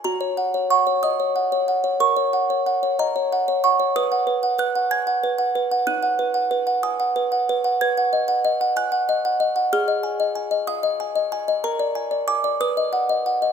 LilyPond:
\new Staff \with { instrumentName = "Music box" } { \time 6/8 \key fis \major \tempo 4. = 62 << { ais''4 cis'''8 dis'''4. | cis'''4. ais''4 cis'''8 | dis'''4 fis'''8 gis'''4. | fis'''4. dis'''4. |
\key ces \lydian aes'''4. fis'''4. | f'''4. ees'''8 r8 aes''8 | bes''4 d'''8 dis'''4. | } \\ { fis'16 cis''16 fis''16 cis''16 fis''16 cis''16 dis''16 cis''16 fis''16 cis''16 fis''16 cis''16 | ais'16 cis''16 fis''16 cis''16 fis''16 cis''16 dis''16 cis''16 fis''16 cis''16 fis''16 cis''16 | b'16 fis''16 b'16 fis''16 b'16 fis''16 gis''16 fis''16 b'16 fis''16 b'16 fis''16 | dis'16 fis''16 b'16 fis''16 b'16 fis''16 gis''16 fis''16 b'16 fis''16 b'16 fis''16 |
b'16 fis''16 dis''16 fis''16 dis''16 fis''16 aes''16 fis''16 dis''16 fis''16 dis''16 fis''16 | aes'16 ees''16 aes''16 ees''16 aes''16 ees''16 f''16 ees''16 aes''16 ees''8 ees''16 | bes'16 d''16 aes''16 d''16 aes''16 d''16 b'16 dis''16 fis''16 dis''16 fis''16 dis''16 | } >> }